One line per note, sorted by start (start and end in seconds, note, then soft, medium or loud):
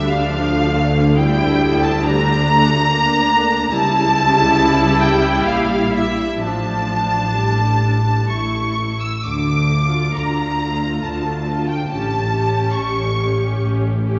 0.00 3.69 D2 medium
0.00 3.69 D3 medium
0.00 0.31 G3 medium
0.00 1.14 D4 medium
0.09 1.17 F5 loud
0.09 1.17 F5 medium
0.31 0.74 F3 medium
0.74 1.17 A3 medium
1.17 2.03 G3 medium
1.17 2.03 E4 medium
1.17 1.81 G5 loud
1.17 1.81 G5 medium
1.81 2.03 A5 medium
1.81 2.05 A5 loud
2.04 2.47 G3 medium
2.04 2.89 D4 medium
2.04 3.73 A#5 loud
2.48 2.89 A3 medium
2.90 3.73 A#3 medium
2.90 3.72 D4 medium
3.72 5.41 C#2 loud
3.72 5.41 C#3 medium
3.72 6.38 G3 loud
3.72 6.37 E4 loud
3.72 5.01 A5 loud
3.72 4.98 A5 loud
5.01 5.45 G5 loud
5.45 6.42 A#1 medium
5.45 6.42 A#2 medium
5.45 5.93 F5 medium
5.94 6.41 E5 medium
5.94 6.43 E5 medium
6.42 8.27 A1 medium
6.42 8.27 A2 medium
6.42 7.36 F3 medium
6.42 8.30 D4 medium
6.42 8.27 A5 loud
6.42 8.27 A5 medium
7.37 8.29 G3 medium
8.30 9.02 A1 medium
8.30 9.02 A2 medium
8.30 9.03 A3 medium
8.30 9.02 E4 medium
8.30 9.01 C#6 medium
9.01 9.24 E6 medium
9.24 10.05 D2 medium
9.24 10.05 D3 medium
9.24 10.15 D6 loud
9.24 10.14 D6 medium
9.70 10.59 A3 medium
9.70 10.59 F4 medium
10.15 10.93 D2 medium
10.15 10.94 D3 medium
10.15 11.04 A#5 medium
10.60 11.45 A3 medium
10.60 11.45 F4 soft
11.04 11.79 D2 medium
11.04 11.79 D3 medium
11.04 11.68 A5 medium
11.47 11.88 A3 medium
11.47 11.88 F4 medium
11.68 11.89 G5 medium
11.89 12.64 A1 medium
11.89 12.63 A2 medium
11.89 12.30 C#4 medium
11.89 12.30 G4 medium
11.89 12.72 A5 medium
12.31 13.16 C#4 medium
12.31 13.16 G4 medium
12.73 13.51 A1 medium
12.73 13.50 A2 medium
12.73 13.60 C#6 medium
13.17 14.02 C#4 medium
13.17 14.02 G4 medium
13.61 14.19 A1 medium
13.61 14.19 A2 medium
14.04 14.19 C#4 medium
14.04 14.19 G4 medium